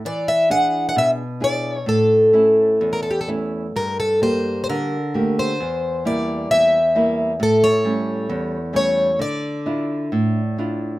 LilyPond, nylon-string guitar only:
\new Staff \with { instrumentName = "Nylon-string guitar" } { \time 2/4 \key a \phrygian \tempo 4 = 66 e8 <d' e' gis'>8 b,8 <d' e' gis'>8 | a,8 <a cis' e'>8 e,8 <a cis' e'>8 | g,8 <g bes g'>8 d8 <a bes g'>8 | e,8 <g bes e'>8 e,8 <g bes e'>8 |
a,8 <g a cis'>8 e,8 <g a cis'>8 | d8 <d' e' f'>8 a,8 <d' e' f'>8 | }